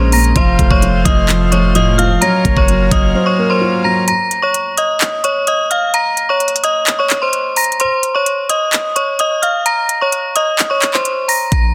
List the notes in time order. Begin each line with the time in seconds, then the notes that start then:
Already playing: A#1 A#2 G#3 C#4 D#4 A#4 C5 C6
0.12 A#2 A#5 A#6, closed hi-hat, open hi-hat
0.24 closed hi-hat
0.35 F1 F3 A3 C4 F4 C5 F5 C6, kick, closed hi-hat
0.59 F1 A3, kick, closed hi-hat
0.71 F1 C#5 C#6, kick
0.82 F3, closed hi-hat
1.05 F1 F3 D#5 D#6, kick, closed hi-hat
1.29 F3, clap, closed hi-hat
1.52 C2 A2 F3 A3 C#5 C#6, closed hi-hat
1.75 C2 A2 F3 F4 D#5 D#6, closed hi-hat
1.98 F3 F5 F6, closed hi-hat
2.21 F#3 C#4 A#4 C#5 A#5 A#6, closed hi-hat
2.45 F#1 A#3, kick, closed hi-hat
2.57 F#1 C#5 C#6, kick
2.68 F#3, closed hi-hat
2.91 F#1 F#3 D#5 D#6, kick, closed hi-hat
3.15 F#3 C5
3.26 C#5 C#6
3.38 A#3 A#4
3.50 C5 C6
3.61 F4
3.84 F#3 A#5 A#6
4.08 A#5 A#6, closed hi-hat
4.31 closed hi-hat
4.42 C#5 C#6
4.54 closed hi-hat
4.77 D#5 D#6, closed hi-hat
5.01 clap, closed hi-hat
5.24 C#5 C#6, closed hi-hat
5.47 D#5 D#6, closed hi-hat
5.70 F5 F6, closed hi-hat
5.94 A#5 A#6, closed hi-hat
6.17 closed hi-hat
6.29 C#5 C#6
6.40 closed hi-hat
6.48 closed hi-hat
6.56 closed hi-hat
6.64 D#5 D#6, closed hi-hat
6.87 clap, closed hi-hat
6.99 C#5 C#6
7.10 clap, closed hi-hat
7.22 C5 C6
7.33 closed hi-hat
7.56 A#5 A#6, closed hi-hat, open hi-hat
7.64 closed hi-hat
7.72 closed hi-hat
7.80 C5 C6, closed hi-hat
8.03 closed hi-hat
8.15 C#5 C#6
8.26 closed hi-hat
8.49 D#5 D#6, closed hi-hat
8.73 clap, closed hi-hat
8.96 C#5 C#6, closed hi-hat
9.19 D#5 D#6, closed hi-hat
9.42 F5 F6, closed hi-hat
9.66 A#5 A#6, closed hi-hat
9.89 closed hi-hat
10.01 C#5 C#6
10.12 closed hi-hat
10.36 D#5 D#6, closed hi-hat
10.59 clap, closed hi-hat
10.70 C#5 C#6
10.82 clap, closed hi-hat
10.94 C5 C6, clap
11.05 closed hi-hat
11.28 A#5 A#6, open hi-hat
11.52 A#1 A#5 A#6, kick, closed hi-hat